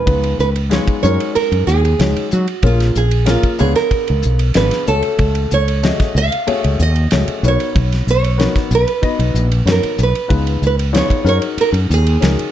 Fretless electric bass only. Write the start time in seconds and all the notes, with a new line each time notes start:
0.07 C#2
0.39 C#2
0.87 muted fretless electric bass stroke
1.04 F#2
1.36 muted fretless electric bass stroke
1.52 F#2
1.67 D#2
2.00 C#2
2.33 F#3
2.63 A#1
2.96 A#1
3.43 muted fretless electric bass stroke
3.61 C#2
3.91 muted fretless electric bass stroke
4.10 C#2
4.25 B1
4.56 G#1
4.72 muted fretless electric bass stroke
4.88 C#2
5.19 C#2
5.52 C#2
6.00 muted fretless electric bass stroke
6.15 C#2
6.48 muted fretless electric bass stroke
6.65 C#2
6.80 D#2
7.13 C#2
7.28 muted fretless electric bass stroke
7.43 B1
7.75 B1
8.07 B1
8.55 muted fretless electric bass stroke
8.71 B1
9.03 muted fretless electric bass stroke
9.19 B1
9.34 A#1
9.66 F#2
9.84 muted fretless electric bass stroke
9.99 B1
10.31 C#2
10.62 C#2
11.10 muted fretless electric bass stroke
11.25 F#2
11.57 muted fretless electric bass stroke
11.73 F#2
11.90 D#2
12.23 C#2